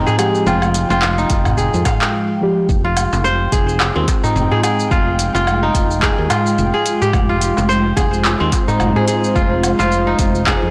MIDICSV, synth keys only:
0, 0, Header, 1, 2, 480
1, 0, Start_track
1, 0, Key_signature, -4, "minor"
1, 0, Tempo, 555556
1, 406, Time_signature, 4, 2, 24, 8
1, 9250, End_track
2, 0, Start_track
2, 0, Title_t, "Synth keys"
2, 0, Program_c, 0, 88
2, 0, Note_on_c, 0, 53, 73
2, 0, Note_on_c, 0, 56, 67
2, 0, Note_on_c, 0, 79, 85
2, 130, Note_off_c, 0, 53, 0
2, 138, Note_off_c, 0, 56, 0
2, 147, Note_off_c, 0, 79, 0
2, 153, Note_on_c, 0, 53, 74
2, 161, Note_on_c, 0, 56, 70
2, 168, Note_on_c, 0, 67, 79
2, 374, Note_off_c, 0, 53, 0
2, 379, Note_off_c, 0, 56, 0
2, 382, Note_off_c, 0, 67, 0
2, 395, Note_on_c, 0, 53, 85
2, 403, Note_on_c, 0, 56, 76
2, 414, Note_on_c, 0, 79, 95
2, 745, Note_off_c, 0, 53, 0
2, 748, Note_off_c, 0, 56, 0
2, 754, Note_off_c, 0, 79, 0
2, 767, Note_on_c, 0, 53, 73
2, 784, Note_on_c, 0, 56, 73
2, 802, Note_on_c, 0, 79, 90
2, 2053, Note_off_c, 0, 53, 0
2, 2062, Note_off_c, 0, 56, 0
2, 2070, Note_off_c, 0, 79, 0
2, 2083, Note_on_c, 0, 53, 79
2, 2090, Note_on_c, 0, 56, 64
2, 2100, Note_on_c, 0, 67, 89
2, 2299, Note_off_c, 0, 53, 0
2, 2303, Note_off_c, 0, 56, 0
2, 2308, Note_off_c, 0, 67, 0
2, 9250, End_track
0, 0, End_of_file